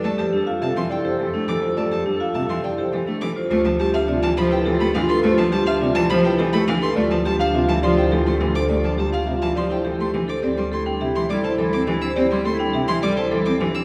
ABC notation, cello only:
X:1
M:3/4
L:1/16
Q:1/4=104
K:Ddor
V:1 name="Cello" clef=bass
A, F, G, z C, E, z2 E, A, E, z | A, F, G, z C, E, z2 E, A, E, z | A, F, G, z C, E, F, z E, A, E, z | A, F, G, z C, E, F, z E, A, E, z |
A, F, G, z C, E, F, z E, A, E, z | A, F, G, z C, E, F, z E, A, E, z | C G, A, z C, E, G, z E, C E, z | C G, A, z C, E, G, z E, C E, z |]